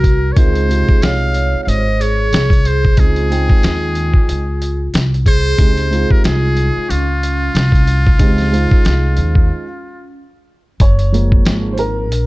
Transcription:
0.00 0.34 C2 medium
0.00 0.27 F#4 medium
0.00 0.34 A#4 medium
0.00 kick medium
0.04 closed hi-hat medium
0.31 0.37 A#4 medium
0.31 0.40 C#5 medium
0.36 0.86 C#2 medium
0.36 0.65 G#3 medium
0.36 0.65 C4 medium
0.36 0.65 D#4 medium
0.36 0.66 F4 medium
0.36 1.02 G#4 medium
0.36 1.05 C5 loud
0.36 kick loud
0.36 closed hi-hat medium
0.55 closed hi-hat medium
0.68 1.81 C3 medium
0.68 1.80 G#3 medium
0.68 1.81 D#4 medium
0.68 1.81 F4 medium
0.68 closed hi-hat medium
0.89 kick medium
1.02 1.51 C2 medium
1.02 1.60 C#5 medium
1.02 1.62 F5 loud
1.02 snare loud
1.02 closed hi-hat medium
1.34 closed hi-hat medium
1.54 muted upright bass stroke soft
1.61 1.67 C#5 medium
1.61 1.70 F5 medium
1.67 2.29 G#1 medium
1.67 2.00 C5 medium
1.67 2.03 D#5 loud
1.67 closed hi-hat medium
2.00 2.64 G#4 medium
2.00 2.69 C#5 medium
2.00 closed hi-hat medium
2.33 2.94 C2 medium
2.33 snare loud
2.33 closed hi-hat medium
2.50 kick medium
2.50 closed hi-hat soft
2.65 2.98 G#4 medium
2.65 3.01 C5 loud
2.65 closed hi-hat medium
2.85 kick medium
2.97 3.47 C#2 medium
2.97 3.26 G#3 medium
2.97 3.26 C4 medium
2.97 3.26 D#4 medium
2.97 4.94 F4 medium
2.97 3.26 G#4 medium
2.97 4.94 G#4 loud
2.97 kick loud
2.97 closed hi-hat medium
3.16 closed hi-hat soft
3.30 4.41 G#3 medium
3.30 4.42 C4 medium
3.30 4.42 D#4 medium
3.30 4.42 G5 medium
3.30 closed hi-hat medium
3.50 muted upright bass stroke soft
3.50 kick loud
3.63 4.12 D#2 medium
3.63 snare loud
3.63 closed hi-hat medium
3.95 closed hi-hat medium
4.14 muted upright bass stroke soft
4.14 kick medium
4.28 4.90 C#2 medium
4.28 closed hi-hat medium
4.62 closed hi-hat medium
4.94 5.56 C2 medium
4.94 snare loud
4.94 closed hi-hat medium
5.14 closed hi-hat soft
5.26 6.06 G#4 medium
5.26 6.13 C5 loud
5.26 kick medium
5.26 closed hi-hat medium
5.58 6.08 C#2 loud
5.58 5.86 G#3 medium
5.58 5.87 C4 medium
5.58 5.87 D#4 medium
5.58 5.88 G4 medium
5.58 kick loud
5.58 closed hi-hat medium
5.77 closed hi-hat soft
5.90 7.02 G#3 medium
5.90 7.02 C4 medium
5.90 7.03 D#4 medium
5.90 7.03 F4 medium
5.90 closed hi-hat medium
6.10 6.24 G4 medium
6.10 6.24 A#4 medium
6.10 muted upright bass stroke soft
6.10 kick medium
6.24 6.73 C2 medium
6.24 6.85 F4 medium
6.24 6.92 G#4 medium
6.24 snare loud
6.24 closed hi-hat medium
6.57 closed hi-hat medium
6.76 muted upright bass stroke soft
6.88 7.51 C#2 medium
6.88 10.15 C#4 medium
6.88 10.16 F4 loud
6.88 closed hi-hat loud
7.23 closed hi-hat medium
7.55 8.16 C2 medium
7.55 snare loud
7.55 closed hi-hat medium
7.72 kick medium
7.72 closed hi-hat soft
7.87 closed hi-hat medium
8.07 kick medium
8.19 8.69 C#2 loud
8.19 8.47 G#3 medium
8.19 8.48 C4 medium
8.19 8.48 D#4 medium
8.19 8.49 G4 medium
8.19 kick loud
8.19 closed hi-hat loud
8.38 snare soft
8.38 closed hi-hat soft
8.51 9.63 G#3 medium
8.51 9.64 D#4 medium
8.51 9.64 F4 medium
8.51 9.63 C5 medium
8.51 closed hi-hat medium
8.71 kick medium
8.85 9.16 C2 medium
8.85 snare loud
8.85 closed hi-hat medium
9.17 9.49 D#2 medium
9.17 closed hi-hat medium
9.35 kick medium
10.80 11.42 F#1 loud
10.80 11.76 C#5 medium
10.80 kick loud
10.80 closed hi-hat medium
10.99 closed hi-hat soft
11.12 12.06 F3 medium
11.12 12.07 G#3 soft
11.12 12.07 A#3 medium
11.12 closed hi-hat medium
11.32 kick loud
11.45 12.11 G#1 medium
11.45 snare loud
11.45 closed hi-hat medium
11.72 11.78 C5 medium
11.78 12.27 A#4 loud
11.78 closed hi-hat medium
12.11 12.27 A#1 medium
12.11 closed hi-hat medium

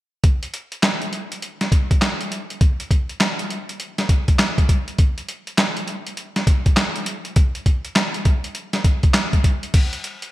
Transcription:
0.24 kick loud
0.24 closed hi-hat medium
0.43 closed hi-hat medium
0.54 closed hi-hat medium
0.72 closed hi-hat medium
0.83 snare loud
0.83 clap medium
0.83 closed hi-hat medium
1.02 closed hi-hat soft
1.13 closed hi-hat medium
1.32 closed hi-hat medium
1.42 closed hi-hat medium
1.61 snare medium
1.61 closed hi-hat soft
1.72 kick loud
1.72 closed hi-hat medium
1.91 kick medium
1.91 closed hi-hat soft
2.02 snare loud
2.02 clap medium
2.02 closed hi-hat medium
2.21 closed hi-hat medium
2.32 closed hi-hat medium
2.50 closed hi-hat medium
2.61 kick loud
2.61 closed hi-hat medium
2.80 closed hi-hat medium
2.91 kick medium
2.91 closed hi-hat medium
3.09 closed hi-hat soft
3.20 snare loud
3.20 clap medium
3.20 closed hi-hat medium
3.39 closed hi-hat medium
3.50 closed hi-hat medium
3.69 closed hi-hat medium
3.80 closed hi-hat medium
3.98 snare medium
3.98 closed hi-hat medium
4.09 kick loud
4.09 closed hi-hat medium
4.28 kick medium
4.28 closed hi-hat soft
4.39 snare loud
4.39 clap medium
4.39 closed hi-hat medium
4.58 kick medium
4.58 closed hi-hat soft
4.69 kick medium
4.69 closed hi-hat medium
4.88 closed hi-hat medium
4.98 kick loud
4.98 closed hi-hat medium
5.18 closed hi-hat medium
5.29 closed hi-hat medium
5.47 closed hi-hat medium
5.58 snare loud
5.58 clap medium
5.58 closed hi-hat medium
5.77 closed hi-hat soft
5.88 closed hi-hat medium
6.07 closed hi-hat medium
6.17 closed hi-hat medium
6.36 snare medium
6.36 closed hi-hat medium
6.47 kick loud
6.47 closed hi-hat medium
6.66 kick medium
6.66 closed hi-hat medium
6.77 snare loud
6.77 clap medium
6.77 closed hi-hat medium
6.96 closed hi-hat medium
7.06 closed hi-hat medium
7.25 closed hi-hat medium
7.36 kick loud
7.36 closed hi-hat medium
7.55 closed hi-hat medium
7.66 kick medium
7.66 closed hi-hat medium
7.85 closed hi-hat soft
7.96 snare loud
7.96 clap medium
7.96 closed hi-hat medium
8.14 closed hi-hat medium
8.25 kick loud
8.25 closed hi-hat medium
8.44 closed hi-hat medium
8.55 closed hi-hat medium
8.73 snare medium
8.73 closed hi-hat medium
8.84 kick loud
8.84 closed hi-hat medium
9.03 kick medium
9.03 closed hi-hat soft
9.14 snare loud
9.14 clap medium
9.14 closed hi-hat medium
9.33 kick medium
9.33 closed hi-hat soft
9.44 kick medium
9.44 closed hi-hat medium
9.63 closed hi-hat medium
9.74 kick loud
9.74 closed hi-hat medium
9.74 crash medium
9.93 closed hi-hat medium
10.04 closed hi-hat medium
10.22 closed hi-hat medium

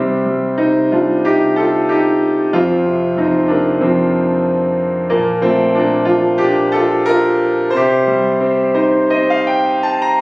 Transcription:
0.00 0.58 C3 soft
0.00 0.24 G3 soft
0.00 0.57 C4 medium
0.26 0.91 G3 soft
0.58 1.24 C3 soft
0.58 0.90 C4 soft
0.58 0.90 D#4 medium
0.92 2.19 G3 soft
0.92 1.24 D4 soft
0.92 1.27 F4 medium
1.25 2.50 C3 soft
1.25 1.57 D#4 medium
1.25 1.59 G4 medium
1.56 1.89 F4 medium
1.56 1.91 A4 medium
1.89 2.51 D#4 medium
1.89 2.56 G4 medium
2.53 3.15 F2 medium
2.53 3.14 C4 medium
2.53 3.19 F4 medium
2.86 3.47 C3 soft
3.17 3.79 F2 soft
3.17 3.51 D#4 medium
3.21 3.49 C4 soft
3.48 4.74 C3 soft
3.48 3.80 A#3 soft
3.48 3.82 D4 medium
3.80 5.07 F2 medium
3.80 4.43 F3 soft
3.80 4.42 C4 medium
5.10 5.73 A#2 medium
5.10 5.40 F3 medium
5.10 5.44 A#3 medium
5.41 6.04 F3 medium
5.41 5.74 A3 medium
5.41 5.76 C4 medium
5.74 6.39 A#2 medium
5.74 6.08 D4 medium
5.79 6.08 A#3 medium
6.05 7.36 F3 medium
6.05 6.37 F4 medium
6.10 6.40 D4 medium
6.38 7.70 A#2 medium
6.38 6.74 G4 medium
6.43 6.73 D4 medium
6.72 7.08 A4 medium
6.76 7.07 F4 medium
7.06 7.72 F4 medium
7.06 7.76 A#4 loud
7.70 10.21 C3 medium
7.70 8.73 C5 medium
7.76 9.80 G4 medium
8.07 9.42 G3 medium
8.40 9.09 C4 medium
8.74 10.15 D#4 medium
8.74 9.08 C5 medium
9.10 10.21 C4 medium
9.10 9.27 D#5 medium
9.30 9.46 F5 medium
9.47 9.81 G5 medium
9.83 10.00 A5 medium
10.02 10.18 A#5 medium

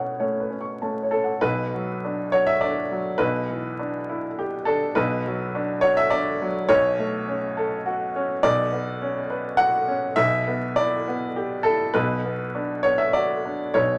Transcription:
0.00 1.43 B2 medium
0.00 0.17 C#4 soft
0.00 0.10 C#5 soft
0.00 1.24 F#5 soft
0.20 0.48 A3 soft
0.20 0.48 C#4 soft
0.20 0.53 C#5 soft
0.40 0.61 B4 soft
0.50 0.79 C#4 soft
0.61 0.94 C#6 soft
0.82 1.10 A3 soft
0.82 1.10 C#4 soft
0.82 1.15 A5 soft
1.03 1.36 C#5 soft
1.11 1.41 C#4 soft
1.11 1.43 A4 medium
1.24 1.44 F#5 soft
1.41 3.16 B1 medium
1.41 3.17 B2 medium
1.41 2.33 B4 medium
1.74 2.22 F#3 soft
2.05 2.52 D4 soft
2.32 2.81 F#4 soft
2.32 2.48 C#5 medium
2.47 2.62 E5 medium
2.61 3.09 D4 medium
2.61 3.20 D5 medium
2.91 3.21 F#3 soft
3.18 4.92 B1 medium
3.18 4.92 B2 medium
3.18 4.37 B4 medium
3.50 3.97 E3 soft
3.79 4.26 D4 soft
4.09 4.56 E4 medium
4.39 4.85 G4 medium
4.65 4.97 D4 medium
4.65 4.96 A4 medium
4.95 6.65 B1 medium
4.95 6.65 B2 medium
4.95 5.83 B4 medium
5.26 5.72 F#3 medium
5.55 6.01 D4 medium
5.81 6.29 F#4 medium
5.81 5.97 C#5 loud
5.97 6.12 E5 loud
6.10 6.58 D4 medium
6.10 6.69 D5 loud
6.42 6.70 F#3 medium
6.69 8.40 B1 medium
6.69 8.40 B2 medium
6.69 7.85 C#5 loud
6.99 7.45 A3 medium
7.28 7.74 C#4 medium
7.57 8.03 A4 medium
7.86 8.33 F#4 medium
8.16 8.45 C#4 medium
8.43 10.14 B1 medium
8.43 10.15 B2 medium
8.43 9.59 D5 loud
8.73 9.19 B3 medium
9.02 9.48 C#4 medium
9.30 9.77 B4 medium
9.57 10.06 F#4 medium
9.57 10.17 F#5 loud
9.88 10.18 C#4 medium
10.16 11.91 B1 medium
10.16 11.91 B2 medium
10.16 10.76 E5 loud
10.47 10.95 B3 medium
10.76 11.25 E4 medium
10.76 11.65 D5 loud
11.08 11.55 B3 medium
11.36 11.84 G4 medium
11.63 11.95 E4 medium
11.63 11.94 A4 medium
11.94 13.72 B1 medium
11.94 13.73 B2 medium
11.94 12.83 B4 medium
12.24 12.72 B3 medium
12.55 13.03 D4 soft
12.83 13.33 B3 medium
12.83 12.99 C#5 medium
12.98 13.14 E5 medium
13.13 13.64 F#4 medium
13.13 13.76 D5 medium
13.45 13.77 D4 soft
13.74 13.98 B1 medium
13.74 13.98 B2 medium
13.74 13.98 C#5 medium

